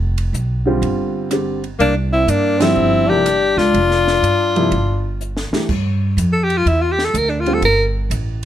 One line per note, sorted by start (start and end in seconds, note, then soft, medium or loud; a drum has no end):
0.00 0.30 F1 medium
0.18 ride medium
0.33 0.79 B1 medium
0.33 hi-hat pedal medium
0.66 1.28 D3 medium
0.66 1.28 G3 medium
0.66 1.28 C4 medium
0.66 1.29 F4 medium
0.82 1.76 G1 medium
0.82 ride medium
1.31 1.60 D3 medium
1.31 1.61 G3 soft
1.31 1.61 C4 soft
1.31 1.61 G4 medium
1.31 cross-stick medium
1.31 hi-hat pedal soft
1.31 ride medium
1.64 ride soft
1.79 2.25 C2 medium
1.79 1.94 A#3 medium
1.79 1.95 D4 medium
1.79 ride soft
2.11 2.28 C4 medium
2.11 2.31 E4 medium
2.27 2.73 G2 medium
2.27 2.60 A#3 medium
2.27 2.64 D4 medium
2.27 hi-hat pedal soft
2.27 ride medium
2.59 3.06 D3 medium
2.59 3.07 F3 medium
2.59 3.06 G3 medium
2.59 3.09 C4 medium
2.59 3.07 C4 medium
2.59 3.11 E4 medium
2.59 snare medium
2.59 ride medium
2.76 3.53 G1 medium
3.07 3.24 C3 medium
3.07 3.24 F3 medium
3.07 3.25 A#3 medium
3.07 3.57 D4 medium
3.07 3.25 E4 medium
3.07 3.60 G4 medium
3.26 cross-stick medium
3.26 hi-hat pedal medium
3.26 ride medium
3.57 3.73 C#2 medium
3.57 5.20 D4 medium
3.57 5.20 F4 medium
3.57 snare soft
3.74 4.19 F1 medium
3.74 ride medium
3.91 snare soft
4.07 snare soft
4.22 4.68 G2 medium
4.22 hi-hat pedal soft
4.22 ride medium
4.56 4.70 C3 medium
4.56 4.70 F3 medium
4.56 4.71 A#3 medium
4.56 4.71 E4 medium
4.56 ride soft
4.71 5.48 G1 medium
4.71 ride soft
5.21 hi-hat pedal soft
5.37 snare soft
5.51 5.67 E3 soft
5.51 5.68 A3 soft
5.51 5.68 D4 soft
5.51 5.68 G4 medium
5.51 muted upright bass stroke soft
5.51 snare medium
5.69 6.16 G2 medium
5.69 kick medium
5.69 crash medium
6.17 6.64 F2 medium
6.17 hi-hat pedal medium
6.17 ride medium
6.33 6.45 A4 medium
6.44 6.59 G4 medium
6.50 ride soft
6.57 6.69 F4 medium
6.66 7.13 E2 medium
6.66 6.83 E4 medium
6.66 ride soft
6.81 6.94 F4 medium
6.92 7.07 G4 medium
6.99 snare soft
7.05 7.19 A4 medium
7.14 7.61 D2 medium
7.14 7.31 A#4 medium
7.14 hi-hat pedal medium
7.14 ride medium
7.30 7.42 D4 medium
7.40 7.56 F4 medium
7.46 7.61 D3 medium
7.46 7.61 G3 medium
7.46 7.61 C4 medium
7.46 7.62 F4 medium
7.46 ride soft
7.54 7.62 A4 medium
7.62 8.09 G1 medium
7.62 7.84 A#4 medium
7.62 ride medium
8.10 8.45 A1 medium
8.10 hi-hat pedal medium
8.10 ride medium